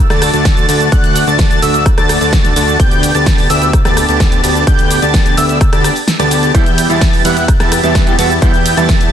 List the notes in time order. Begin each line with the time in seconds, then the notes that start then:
0.10 D2 A3 D4 F#4 D5 A5 A6, cross-stick, snare, closed hi-hat, cabasa
0.22 cross-stick, open hi-hat, cabasa
0.33 D2 A3 D4 F#4 D5 A5 A6, closed hi-hat, cabasa
0.45 kick, snare, closed hi-hat, cabasa
0.57 closed hi-hat, cabasa
0.69 D2 A3 D4 F#4 D5 A5 A6, open hi-hat, cabasa
0.80 closed hi-hat, cabasa
0.92 D2 A3 D4 F#4 D5 F#5 F#6, kick, closed hi-hat, cabasa
1.04 closed hi-hat, cabasa
1.16 open hi-hat, cabasa
1.27 D2 A3 D4 F#4 D5 A5 A6, closed hi-hat, cabasa
1.39 kick, snare, closed hi-hat, cabasa
1.51 closed hi-hat, cabasa
1.62 D2 A3 D4 F#4 D5 E5 E6, open hi-hat, cabasa
1.74 closed hi-hat, cabasa
1.86 kick, cross-stick, closed hi-hat, cabasa
1.98 D2 A3 D4 F#4 D5 A5 A6, cross-stick, closed hi-hat, cabasa
2.09 cross-stick, open hi-hat, cabasa
2.21 D2 A3 D4 F#4 D5 A5 A6, open hi-hat, cabasa
2.33 kick, snare, closed hi-hat, cabasa
2.44 snare, closed hi-hat, cabasa
2.56 D2 A3 D4 F#4 D5 A5 A6, open hi-hat, cabasa
2.68 closed hi-hat, cabasa
2.80 D2 B3 D4 G6, kick, closed hi-hat, cabasa
2.91 closed hi-hat, cabasa
3.03 open hi-hat, cabasa
3.15 D2 B3 D4 G4 D5 A5 A6, closed hi-hat, cabasa
3.26 kick, snare, closed hi-hat, cabasa
3.38 open hi-hat, cabasa
3.50 D2 B3 D4 G4 D5 E5 E6, open hi-hat, cabasa
3.62 closed hi-hat, cabasa
3.73 kick, cross-stick, closed hi-hat, cabasa
3.85 D2 B3 D4 G4 D5 A5 A6, cross-stick, snare, closed hi-hat, cabasa
3.97 cross-stick, open hi-hat, cabasa
4.08 D2 B3 D4 G4 D5 A5 A6, closed hi-hat, cabasa
4.20 kick, snare, closed hi-hat, cabasa
4.32 closed hi-hat, cabasa
4.44 D2 B3 D4 G4 D5 A5 A6, open hi-hat, cabasa
4.55 closed hi-hat, cabasa
4.67 D2 B3 G4 G5 G6, kick, closed hi-hat, cabasa
4.79 closed hi-hat, cabasa
4.91 open hi-hat, cabasa
5.02 D2 B3 D4 G4 D5 A5 A6, closed hi-hat, cabasa
5.14 kick, snare, closed hi-hat, cabasa
5.26 closed hi-hat, cabasa
5.37 D2 B3 D4 G4 D5 E5 E6, open hi-hat, cabasa
5.49 closed hi-hat, cabasa
5.61 kick, cross-stick, closed hi-hat, cabasa
5.73 D2 B3 D4 G4 D5 A5 A6, cross-stick, closed hi-hat, cabasa
5.84 cross-stick, open hi-hat, cabasa
5.96 open hi-hat, cabasa
6.08 snare, closed hi-hat, cabasa
6.19 D2 B3 D4 G4 D5 A5 A6, snare, closed hi-hat, cabasa
6.31 open hi-hat, cabasa
6.43 closed hi-hat, cabasa
6.54 E2 E3 G3 B3 E4 G4 E5 G5 G6, kick, closed hi-hat, cabasa
6.66 closed hi-hat, cabasa
6.78 open hi-hat, ride, cabasa
6.89 E2 E3 G3 B3 E4 G4 E5 A5 A6, closed hi-hat, cabasa
7.01 kick, snare, closed hi-hat, cabasa
7.13 open hi-hat, cabasa
7.24 E2 E3 G3 B3 E4 G4 E5 F#5 F#6, open hi-hat, ride, cabasa
7.37 closed hi-hat, cabasa
7.48 kick, cross-stick, closed hi-hat, cabasa
7.60 E2 B3 E4 G4 E5 A5 A6, cross-stick, snare, closed hi-hat, cabasa
7.72 cross-stick, open hi-hat, ride, cabasa
7.83 E2 E3 G3 B3 E4 G4 E5 A5 A6, closed hi-hat, cabasa
7.95 kick, snare, closed hi-hat, cabasa
8.06 E3 G3 B3 G4, closed hi-hat, cabasa
8.18 E2 E3 G3 B3 E4 F#4 G4 E5 A5 A6, open hi-hat, ride, cabasa
8.30 closed hi-hat, cabasa
8.41 E2 E3 G3 B3 E4 G4 E5 G5 G6, kick, closed hi-hat, cabasa
8.54 closed hi-hat, cabasa
8.66 open hi-hat, ride, cabasa
8.77 E2 E3 G3 B3 E4 G4 E5 A5 A6, closed hi-hat, cabasa
8.89 kick, snare, closed hi-hat, cabasa
9.01 closed hi-hat, cabasa